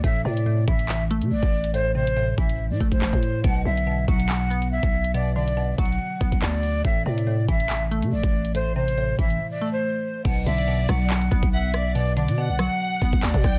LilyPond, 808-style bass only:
\new Staff \with { instrumentName = "808-style bass" } { \clef bass \time 4/4 \key b \phrygian \tempo 4 = 141 a,,8 a,4 a,,4~ a,,16 c16 a,,16 a,,8.~ | a,,4. a,,8. a,16 a,,16 a,,16 a,,16 a,8. | b,,8 b,,4 b,,4.~ b,,16 b,,8.~ | b,,4. b,,8 r8 b,,16 b,,16 d,4 |
a,,8 a,4 a,,4~ a,,16 c16 a,,16 a,,8.~ | a,,4. a,,8 r2 | b,,8 b,,4 b,,4 b,,16 b,,4~ b,,16~ | b,,8. b,8 b,,8 r8. b,,16 b,,16 d,16 b,16 b,,8 | }